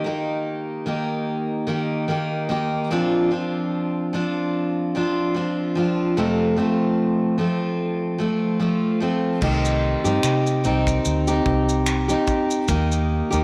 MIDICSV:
0, 0, Header, 1, 4, 480
1, 0, Start_track
1, 0, Tempo, 815217
1, 1706, Time_signature, 4, 2, 24, 8
1, 7913, End_track
2, 0, Start_track
2, 0, Title_t, "Steel-string acoustic guitar"
2, 0, Program_c, 0, 25
2, 25, Note_on_c, 0, 51, 51
2, 35, Note_on_c, 0, 58, 52
2, 39, Note_on_c, 0, 63, 57
2, 44, Note_on_c, 0, 67, 56
2, 498, Note_off_c, 0, 51, 0
2, 505, Note_on_c, 0, 51, 52
2, 508, Note_off_c, 0, 58, 0
2, 508, Note_off_c, 0, 63, 0
2, 510, Note_on_c, 0, 58, 57
2, 512, Note_off_c, 0, 67, 0
2, 515, Note_on_c, 0, 63, 57
2, 519, Note_on_c, 0, 67, 61
2, 975, Note_off_c, 0, 51, 0
2, 982, Note_on_c, 0, 51, 60
2, 986, Note_off_c, 0, 58, 0
2, 987, Note_off_c, 0, 63, 0
2, 989, Note_on_c, 0, 58, 59
2, 993, Note_off_c, 0, 67, 0
2, 994, Note_on_c, 0, 63, 61
2, 1000, Note_on_c, 0, 67, 62
2, 1217, Note_off_c, 0, 51, 0
2, 1224, Note_off_c, 0, 58, 0
2, 1224, Note_on_c, 0, 51, 58
2, 1230, Note_off_c, 0, 63, 0
2, 1231, Note_on_c, 0, 58, 62
2, 1233, Note_off_c, 0, 67, 0
2, 1237, Note_on_c, 0, 63, 61
2, 1242, Note_on_c, 0, 67, 59
2, 1458, Note_off_c, 0, 51, 0
2, 1463, Note_off_c, 0, 58, 0
2, 1465, Note_on_c, 0, 51, 60
2, 1469, Note_off_c, 0, 63, 0
2, 1470, Note_on_c, 0, 58, 62
2, 1474, Note_off_c, 0, 67, 0
2, 1476, Note_on_c, 0, 63, 61
2, 1481, Note_on_c, 0, 67, 62
2, 1706, Note_off_c, 0, 51, 0
2, 1708, Note_off_c, 0, 58, 0
2, 1710, Note_on_c, 0, 46, 66
2, 1711, Note_off_c, 0, 63, 0
2, 1714, Note_off_c, 0, 67, 0
2, 1714, Note_on_c, 0, 53, 75
2, 1716, Note_on_c, 0, 60, 74
2, 1721, Note_on_c, 0, 62, 74
2, 1724, Note_on_c, 0, 65, 83
2, 1940, Note_off_c, 0, 53, 0
2, 1945, Note_off_c, 0, 60, 0
2, 1947, Note_on_c, 0, 53, 52
2, 1948, Note_off_c, 0, 46, 0
2, 1952, Note_on_c, 0, 60, 59
2, 1954, Note_off_c, 0, 62, 0
2, 1955, Note_off_c, 0, 65, 0
2, 1959, Note_on_c, 0, 62, 57
2, 1964, Note_on_c, 0, 65, 52
2, 2429, Note_off_c, 0, 53, 0
2, 2431, Note_on_c, 0, 53, 55
2, 2433, Note_off_c, 0, 62, 0
2, 2436, Note_off_c, 0, 60, 0
2, 2439, Note_on_c, 0, 60, 63
2, 2442, Note_on_c, 0, 62, 65
2, 2445, Note_off_c, 0, 65, 0
2, 2447, Note_on_c, 0, 65, 67
2, 2912, Note_off_c, 0, 53, 0
2, 2914, Note_off_c, 0, 62, 0
2, 2914, Note_on_c, 0, 53, 60
2, 2915, Note_off_c, 0, 60, 0
2, 2918, Note_on_c, 0, 60, 59
2, 2924, Note_on_c, 0, 62, 59
2, 2926, Note_off_c, 0, 65, 0
2, 2928, Note_on_c, 0, 65, 69
2, 3139, Note_off_c, 0, 53, 0
2, 3147, Note_on_c, 0, 53, 54
2, 3150, Note_off_c, 0, 60, 0
2, 3153, Note_off_c, 0, 62, 0
2, 3157, Note_on_c, 0, 60, 59
2, 3158, Note_off_c, 0, 65, 0
2, 3160, Note_on_c, 0, 62, 59
2, 3165, Note_on_c, 0, 65, 56
2, 3381, Note_off_c, 0, 53, 0
2, 3388, Note_on_c, 0, 53, 61
2, 3390, Note_off_c, 0, 60, 0
2, 3393, Note_off_c, 0, 62, 0
2, 3396, Note_off_c, 0, 65, 0
2, 3397, Note_on_c, 0, 60, 59
2, 3401, Note_on_c, 0, 62, 63
2, 3406, Note_on_c, 0, 65, 64
2, 3627, Note_off_c, 0, 53, 0
2, 3632, Note_off_c, 0, 60, 0
2, 3633, Note_on_c, 0, 41, 72
2, 3634, Note_off_c, 0, 62, 0
2, 3635, Note_on_c, 0, 48, 77
2, 3637, Note_off_c, 0, 65, 0
2, 3638, Note_on_c, 0, 53, 77
2, 3640, Note_on_c, 0, 57, 81
2, 3640, Note_on_c, 0, 60, 73
2, 3644, Note_on_c, 0, 65, 75
2, 3859, Note_off_c, 0, 53, 0
2, 3864, Note_off_c, 0, 57, 0
2, 3866, Note_on_c, 0, 53, 57
2, 3869, Note_off_c, 0, 60, 0
2, 3870, Note_off_c, 0, 41, 0
2, 3871, Note_off_c, 0, 48, 0
2, 3871, Note_on_c, 0, 57, 56
2, 3876, Note_off_c, 0, 65, 0
2, 3876, Note_on_c, 0, 60, 63
2, 3883, Note_on_c, 0, 65, 61
2, 4337, Note_off_c, 0, 53, 0
2, 4342, Note_off_c, 0, 57, 0
2, 4344, Note_on_c, 0, 53, 54
2, 4349, Note_on_c, 0, 57, 60
2, 4353, Note_off_c, 0, 60, 0
2, 4355, Note_off_c, 0, 65, 0
2, 4355, Note_on_c, 0, 60, 59
2, 4361, Note_on_c, 0, 65, 64
2, 4812, Note_off_c, 0, 53, 0
2, 4819, Note_off_c, 0, 57, 0
2, 4819, Note_on_c, 0, 53, 55
2, 4827, Note_on_c, 0, 57, 59
2, 4829, Note_off_c, 0, 60, 0
2, 4830, Note_off_c, 0, 65, 0
2, 4832, Note_on_c, 0, 60, 57
2, 4837, Note_on_c, 0, 65, 62
2, 5054, Note_off_c, 0, 53, 0
2, 5059, Note_off_c, 0, 57, 0
2, 5061, Note_on_c, 0, 53, 58
2, 5065, Note_off_c, 0, 60, 0
2, 5066, Note_on_c, 0, 57, 54
2, 5070, Note_off_c, 0, 65, 0
2, 5072, Note_on_c, 0, 60, 54
2, 5077, Note_on_c, 0, 65, 63
2, 5294, Note_off_c, 0, 53, 0
2, 5301, Note_off_c, 0, 57, 0
2, 5301, Note_on_c, 0, 53, 55
2, 5307, Note_off_c, 0, 60, 0
2, 5308, Note_on_c, 0, 57, 63
2, 5313, Note_off_c, 0, 65, 0
2, 5314, Note_on_c, 0, 60, 65
2, 5319, Note_on_c, 0, 65, 62
2, 5538, Note_off_c, 0, 53, 0
2, 5539, Note_off_c, 0, 60, 0
2, 5540, Note_on_c, 0, 51, 56
2, 5544, Note_off_c, 0, 57, 0
2, 5546, Note_on_c, 0, 60, 62
2, 5552, Note_on_c, 0, 63, 55
2, 5554, Note_off_c, 0, 65, 0
2, 5556, Note_on_c, 0, 67, 60
2, 5906, Note_off_c, 0, 67, 0
2, 5913, Note_on_c, 0, 67, 54
2, 5916, Note_off_c, 0, 51, 0
2, 5916, Note_off_c, 0, 63, 0
2, 5920, Note_off_c, 0, 60, 0
2, 5923, Note_on_c, 0, 63, 47
2, 5929, Note_on_c, 0, 60, 45
2, 6263, Note_off_c, 0, 60, 0
2, 6263, Note_on_c, 0, 51, 55
2, 6265, Note_off_c, 0, 67, 0
2, 6268, Note_off_c, 0, 63, 0
2, 6270, Note_on_c, 0, 60, 59
2, 6275, Note_on_c, 0, 63, 63
2, 6281, Note_on_c, 0, 67, 65
2, 6631, Note_off_c, 0, 67, 0
2, 6638, Note_off_c, 0, 51, 0
2, 6638, Note_on_c, 0, 67, 51
2, 6639, Note_off_c, 0, 63, 0
2, 6642, Note_off_c, 0, 60, 0
2, 6646, Note_on_c, 0, 63, 51
2, 6654, Note_on_c, 0, 60, 44
2, 7111, Note_off_c, 0, 67, 0
2, 7114, Note_on_c, 0, 67, 56
2, 7122, Note_off_c, 0, 63, 0
2, 7123, Note_off_c, 0, 60, 0
2, 7125, Note_on_c, 0, 63, 49
2, 7130, Note_on_c, 0, 60, 46
2, 7464, Note_on_c, 0, 51, 53
2, 7466, Note_off_c, 0, 67, 0
2, 7468, Note_off_c, 0, 63, 0
2, 7469, Note_off_c, 0, 60, 0
2, 7472, Note_on_c, 0, 58, 61
2, 7475, Note_on_c, 0, 63, 58
2, 7480, Note_on_c, 0, 67, 67
2, 7827, Note_off_c, 0, 67, 0
2, 7834, Note_on_c, 0, 67, 59
2, 7840, Note_off_c, 0, 51, 0
2, 7840, Note_off_c, 0, 63, 0
2, 7843, Note_off_c, 0, 58, 0
2, 7847, Note_on_c, 0, 63, 49
2, 7854, Note_on_c, 0, 58, 49
2, 7913, Note_off_c, 0, 58, 0
2, 7913, Note_off_c, 0, 63, 0
2, 7913, Note_off_c, 0, 67, 0
2, 7913, End_track
3, 0, Start_track
3, 0, Title_t, "Fingered electric bass"
3, 0, Program_c, 1, 33
3, 5546, Note_on_c, 1, 36, 89
3, 5852, Note_off_c, 1, 36, 0
3, 5915, Note_on_c, 1, 43, 80
3, 6006, Note_off_c, 1, 43, 0
3, 6026, Note_on_c, 1, 48, 82
3, 6270, Note_on_c, 1, 36, 79
3, 6279, Note_off_c, 1, 48, 0
3, 6467, Note_off_c, 1, 36, 0
3, 6510, Note_on_c, 1, 38, 87
3, 6706, Note_off_c, 1, 38, 0
3, 6747, Note_on_c, 1, 36, 76
3, 7142, Note_off_c, 1, 36, 0
3, 7469, Note_on_c, 1, 39, 105
3, 7775, Note_off_c, 1, 39, 0
3, 7846, Note_on_c, 1, 39, 77
3, 7913, Note_off_c, 1, 39, 0
3, 7913, End_track
4, 0, Start_track
4, 0, Title_t, "Drums"
4, 5546, Note_on_c, 9, 36, 98
4, 5547, Note_on_c, 9, 49, 81
4, 5605, Note_off_c, 9, 36, 0
4, 5605, Note_off_c, 9, 49, 0
4, 5683, Note_on_c, 9, 82, 47
4, 5741, Note_off_c, 9, 82, 0
4, 5919, Note_on_c, 9, 82, 44
4, 5978, Note_off_c, 9, 82, 0
4, 6024, Note_on_c, 9, 26, 97
4, 6029, Note_on_c, 9, 82, 68
4, 6083, Note_off_c, 9, 26, 0
4, 6088, Note_off_c, 9, 82, 0
4, 6163, Note_on_c, 9, 82, 42
4, 6222, Note_off_c, 9, 82, 0
4, 6267, Note_on_c, 9, 82, 50
4, 6326, Note_off_c, 9, 82, 0
4, 6400, Note_on_c, 9, 36, 79
4, 6403, Note_on_c, 9, 82, 48
4, 6458, Note_off_c, 9, 36, 0
4, 6462, Note_off_c, 9, 82, 0
4, 6507, Note_on_c, 9, 82, 72
4, 6566, Note_off_c, 9, 82, 0
4, 6640, Note_on_c, 9, 82, 45
4, 6699, Note_off_c, 9, 82, 0
4, 6747, Note_on_c, 9, 36, 82
4, 6806, Note_off_c, 9, 36, 0
4, 6883, Note_on_c, 9, 82, 48
4, 6942, Note_off_c, 9, 82, 0
4, 6986, Note_on_c, 9, 26, 98
4, 6986, Note_on_c, 9, 82, 65
4, 7045, Note_off_c, 9, 26, 0
4, 7045, Note_off_c, 9, 82, 0
4, 7121, Note_on_c, 9, 82, 44
4, 7180, Note_off_c, 9, 82, 0
4, 7226, Note_on_c, 9, 82, 42
4, 7228, Note_on_c, 9, 36, 87
4, 7285, Note_off_c, 9, 82, 0
4, 7287, Note_off_c, 9, 36, 0
4, 7364, Note_on_c, 9, 82, 51
4, 7423, Note_off_c, 9, 82, 0
4, 7467, Note_on_c, 9, 82, 71
4, 7469, Note_on_c, 9, 36, 96
4, 7526, Note_off_c, 9, 82, 0
4, 7528, Note_off_c, 9, 36, 0
4, 7607, Note_on_c, 9, 82, 44
4, 7665, Note_off_c, 9, 82, 0
4, 7845, Note_on_c, 9, 82, 44
4, 7904, Note_off_c, 9, 82, 0
4, 7913, End_track
0, 0, End_of_file